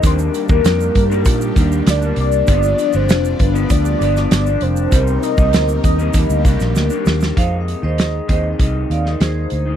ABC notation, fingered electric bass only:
X:1
M:4/4
L:1/16
Q:1/4=98
K:Fdor
V:1 name="Fingered electric bass" clef=bass
E,,2 z E,, F,,2 G,,2 B,,2 E,,2 D,,2 C,,2 | G,,,2 z G,,, F,,,2 G,,,2 D,,2 G,,,2 G,,,2 F,,,2 | C,,2 z C,, D,,2 E,,2 E,, D,, C,, B,,, D,, z E,,2 | F,,3 E,,3 E,,2 C,,2 E,,2 E,,2 D,,2 |]